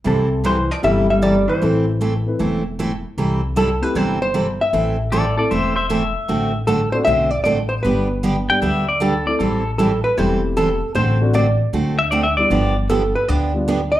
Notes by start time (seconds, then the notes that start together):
0.04 C2 C3 E3 G3 C4 E4 A4
0.44 C3 E3 G3 C4 E4 A4 C5
0.71 F3 D5
0.82 G1 C3 E3 G3 A3 C4 E4 G4 A4 E5
1.10 G3 E5
1.22 C3 E3 G3 C4 E4 A4 D5
1.48 E3 C5
1.61 A1 E3 A3 C4 E4 A4
2.01 E3 A3 C4 E4 A4
2.26 A3 C4 E4 B4
2.39 E1 E3 A3 C4 E4 A4
2.79 E3 A3 C4 E4 A4
3.17 C2 C3 E3 G3 C4 E4 A4
3.56 C3 E3 G3 C4 E4 A4
3.82 A3 C4 E4 G4 B4
3.95 G1 C3 E3 G3 C4 E4 A4 C5
4.22 C5
4.34 C3 E3 G3 C4 E4 A4
4.61 E5
4.73 A1 E3 A3 C4 E4 A4
5.12 E3 A3 C4 E4 A4 D5
5.37 A3 C4 E4 A4 D5
5.51 E1 E3 A3 C4 E4 A4 C5 E5
5.76 C5 E5
5.89 E3 A3 C4 E4 A4 E5
6.28 A1 D3 A3 C4 F#4 A4
6.67 D3 A3 C4 F#4 A4
6.92 A3 C4 D4 F#4 C5
7.05 B1 D3 A3 C4 F#4 A4 E5
7.31 D5
7.44 A1 D3 A3 C4 F#4 A4 D5
7.69 C5
7.83 G1 D3 G3 B3 D4 G4 B4
8.23 D3 G3 B3 D4 G4
8.49 G3 B3 D4 G4 G5
8.62 D2 D3 G3 B3 D4 G4 E5
8.89 D5
9.00 D3 G3 B3 D4 G4 A4
9.26 A3 C4 E4 A4 D5
9.39 A1 E3 G3 C4 E4 A4
9.78 E3 G3 C4 E4 A4
10.04 B4
10.17 E1 E3 G3 A3 C4 E4 G4 A4 C5
10.57 E3 G3 C4 E4 A4
10.95 A1 D3 A3 C4 F#4 A4 C5
11.20 A3 C4 D4 F#4
11.34 D3 A3 C4 F#4 A4 D5
11.73 D2 D3 A3 C4 F#4 A4
11.99 E5
12.11 D3 A3 C4 F#4 A4 D5
12.23 E5
12.37 G3 B3 D4 E4 D5
12.50 G1 D3 F3 B3 D4 G4 D5
12.89 D3 F3 B3 D4 G4 A4
13.15 B4
13.28 D2 D3 F3 B3 D4 G4 D5
13.54 G3 B3 D4 F4
13.68 D3 F3 B3 D4 G4
13.92 E5